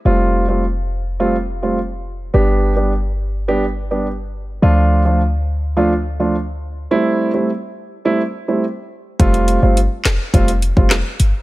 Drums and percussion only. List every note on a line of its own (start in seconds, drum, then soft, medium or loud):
9.20 kick loud
9.20 closed hi-hat medium
9.34 closed hi-hat medium
9.48 closed hi-hat medium
9.77 closed hi-hat medium
10.05 snare loud
10.05 clap loud
10.05 closed hi-hat medium
10.34 kick medium
10.34 closed hi-hat medium
10.48 closed hi-hat medium
10.62 closed hi-hat medium
10.77 kick loud
10.90 cross-stick loud
10.90 snare loud
10.90 clap medium
10.90 closed hi-hat medium
11.20 closed hi-hat medium